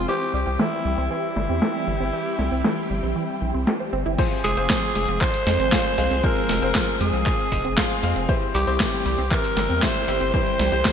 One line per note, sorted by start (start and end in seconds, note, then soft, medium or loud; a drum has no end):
0.00 4.15 C4 medium
0.08 4.15 E3 medium
0.08 0.17 E3 medium
0.08 4.14 G3 medium
0.08 4.15 C4 medium
0.08 4.15 E4 medium
0.08 4.14 G4 medium
0.08 4.15 G4 medium
0.08 0.32 G4 loud
0.08 4.15 C5 medium
0.34 0.45 C2 medium
0.34 0.46 G3 medium
0.34 0.62 G4 loud
0.47 0.57 C2 medium
0.47 0.55 C4 medium
0.59 0.68 E3 medium
0.59 1.11 E4 medium
0.59 snare loud
0.85 0.96 C2 medium
0.85 0.97 G3 medium
0.98 1.09 C2 medium
0.98 1.06 C4 medium
1.11 1.19 E3 medium
1.11 3.63 E4 medium
1.36 1.47 G1 medium
1.36 1.49 G3 medium
1.36 snare medium
1.49 1.60 E2 medium
1.49 1.58 C4 medium
1.62 1.71 E3 medium
1.62 snare loud
1.88 1.98 G1 medium
1.88 2.00 G3 medium
2.00 2.11 G1 medium
2.00 2.09 C4 medium
2.13 2.22 E3 medium
2.39 2.50 C2 medium
2.39 2.51 G3 medium
2.39 snare medium
2.52 2.63 C2 medium
2.52 2.60 C4 medium
2.64 2.73 E3 medium
2.64 snare loud
2.90 3.01 G1 medium
2.90 3.02 G3 medium
3.03 3.14 A#1 medium
3.03 3.12 C4 medium
3.16 3.24 E3 medium
3.42 3.52 A#1 medium
3.42 3.50 E3 medium
3.54 3.65 C2 medium
3.54 3.63 C4 medium
3.67 3.80 G4 loud
3.67 snare loud
3.80 3.85 C5 medium
3.93 4.04 G1 medium
3.93 4.01 C4 loud
4.06 4.16 G1 medium
4.06 4.11 E4 loud
4.18 4.27 F3 medium
4.18 8.25 F3 medium
4.18 8.25 G#3 medium
4.18 4.54 C4 medium
4.18 8.25 C4 medium
4.18 4.54 F4 medium
4.18 4.54 G#4 medium
4.18 8.25 G#4 medium
4.18 4.54 C5 medium
4.18 kick loud
4.18 closed hi-hat medium
4.18 crash loud
4.31 closed hi-hat soft
4.44 4.55 F1 loud
4.44 4.56 G#3 medium
4.44 5.22 G#4 loud
4.44 open hi-hat loud
4.57 4.68 F1 medium
4.57 5.70 C4 medium
4.57 4.66 C4 medium
4.57 5.70 F4 medium
4.57 5.70 G#4 medium
4.57 5.70 C5 medium
4.57 closed hi-hat medium
4.70 4.78 F3 medium
4.70 kick loud
4.70 snare loud
4.70 clap medium
4.70 closed hi-hat medium
4.83 closed hi-hat soft
4.95 5.06 F1 medium
4.95 5.08 G#3 medium
4.95 open hi-hat loud
5.08 5.19 F1 medium
5.08 5.17 C4 medium
5.08 closed hi-hat medium
5.21 5.30 F3 medium
5.21 6.25 C5 loud
5.21 kick loud
5.21 clap medium
5.21 closed hi-hat medium
5.34 open hi-hat medium
5.47 5.57 F2 medium
5.47 5.59 G#3 medium
5.47 snare medium
5.47 open hi-hat loud
5.59 5.70 G#1 medium
5.59 5.68 C4 medium
5.59 closed hi-hat medium
5.72 5.81 F3 medium
5.72 5.95 C4 medium
5.72 5.95 F4 medium
5.72 5.95 G#4 medium
5.72 5.95 F5 loud
5.72 kick loud
5.72 snare loud
5.72 clap loud
5.72 closed hi-hat medium
5.85 closed hi-hat soft
5.98 6.09 C2 medium
5.98 6.10 G#3 medium
5.98 6.21 C4 medium
5.98 6.21 F4 medium
5.98 6.21 G#4 medium
5.98 6.21 F5 loud
5.98 open hi-hat loud
6.11 6.22 C2 medium
6.11 6.19 C4 medium
6.11 closed hi-hat medium
6.24 6.32 F3 medium
6.24 6.59 C4 medium
6.24 6.59 F4 medium
6.24 6.59 G#4 medium
6.24 7.00 A#4 loud
6.24 6.59 C5 loud
6.24 kick loud
6.24 closed hi-hat medium
6.37 closed hi-hat soft
6.49 6.60 F1 medium
6.49 6.61 G#3 medium
6.49 snare medium
6.49 open hi-hat loud
6.62 6.73 F1 medium
6.62 7.75 C4 medium
6.62 6.71 C4 medium
6.62 7.75 F4 medium
6.62 7.75 G#4 medium
6.62 7.75 C5 medium
6.62 closed hi-hat medium
6.75 6.84 F3 medium
6.75 kick loud
6.75 snare loud
6.75 clap medium
6.75 closed hi-hat medium
6.88 closed hi-hat soft
7.00 7.11 F2 medium
7.00 7.13 G#3 medium
7.00 7.99 G#4 medium
7.00 open hi-hat loud
7.13 7.24 C2 medium
7.13 7.22 C4 medium
7.13 closed hi-hat medium
7.26 7.35 F3 medium
7.26 kick loud
7.26 clap medium
7.26 closed hi-hat medium
7.39 closed hi-hat soft
7.52 7.63 F1 loud
7.52 7.64 G#3 medium
7.52 kick medium
7.52 open hi-hat loud
7.65 7.75 F1 medium
7.65 7.73 C4 medium
7.65 closed hi-hat medium
7.78 7.86 F3 medium
7.78 8.00 C4 medium
7.78 8.00 F4 medium
7.78 8.00 G#4 medium
7.78 8.00 F5 loud
7.78 kick loud
7.78 snare loud
7.78 clap loud
7.78 closed hi-hat medium
7.90 closed hi-hat soft
8.03 8.14 F2 medium
8.03 8.15 G#3 medium
8.03 8.26 C4 medium
8.03 8.26 F4 medium
8.03 8.26 G#4 medium
8.03 8.26 F5 loud
8.03 open hi-hat loud
8.16 8.27 F1 medium
8.16 8.24 C4 medium
8.16 closed hi-hat medium
8.29 10.92 E3 medium
8.29 8.37 E3 medium
8.29 10.92 G3 medium
8.29 8.64 C4 medium
8.29 10.92 C4 medium
8.29 8.64 E4 medium
8.29 8.64 G4 medium
8.29 10.92 G4 medium
8.29 8.64 C5 loud
8.29 kick loud
8.29 closed hi-hat medium
8.42 closed hi-hat soft
8.54 8.65 C2 loud
8.54 8.67 G3 medium
8.54 9.33 G4 loud
8.54 open hi-hat loud
8.67 8.78 C2 medium
8.67 8.76 C4 medium
8.67 9.80 C4 medium
8.67 9.80 E4 medium
8.67 9.80 G4 medium
8.67 9.80 C5 medium
8.67 closed hi-hat medium
8.80 8.89 E3 medium
8.80 kick loud
8.80 snare loud
8.80 clap medium
8.80 closed hi-hat medium
8.93 closed hi-hat soft
9.06 9.16 C2 medium
9.06 9.18 G3 medium
9.06 open hi-hat loud
9.18 9.29 C2 medium
9.18 9.27 C4 medium
9.18 closed hi-hat medium
9.31 9.40 E3 medium
9.31 9.84 A#4 loud
9.31 kick loud
9.31 clap medium
9.31 closed hi-hat medium
9.44 open hi-hat medium
9.57 9.68 G1 loud
9.57 9.69 G3 medium
9.57 snare medium
9.57 open hi-hat loud
9.69 9.80 E2 medium
9.69 9.78 C4 medium
9.69 closed hi-hat medium
9.82 9.91 E3 medium
9.82 10.05 C4 medium
9.82 10.05 E4 medium
9.82 10.05 G4 medium
9.82 10.33 C5 loud
9.82 10.05 E5 loud
9.82 kick loud
9.82 snare loud
9.82 clap medium
9.82 closed hi-hat medium
9.95 closed hi-hat soft
10.08 10.19 G1 loud
10.08 10.20 G3 medium
10.08 10.31 C4 medium
10.08 10.31 E4 medium
10.08 10.31 G4 medium
10.08 10.31 E5 loud
10.08 open hi-hat loud
10.21 10.32 G1 medium
10.21 10.29 C4 medium
10.21 closed hi-hat medium
10.34 10.42 E3 medium
10.34 10.69 C4 medium
10.34 10.69 E4 medium
10.34 10.69 G4 medium
10.34 10.69 C5 loud
10.34 10.92 C5 loud
10.34 kick loud
10.34 closed hi-hat medium
10.47 closed hi-hat soft
10.59 10.70 C2 loud
10.59 10.72 G3 medium
10.59 snare medium
10.59 open hi-hat loud
10.72 10.83 C2 medium
10.72 10.81 C4 medium
10.72 10.92 C4 medium
10.72 10.92 E4 medium
10.72 10.92 G4 medium
10.72 10.92 C5 medium
10.72 closed hi-hat medium
10.85 10.92 E3 medium
10.85 kick loud
10.85 snare loud
10.85 clap medium
10.85 closed hi-hat medium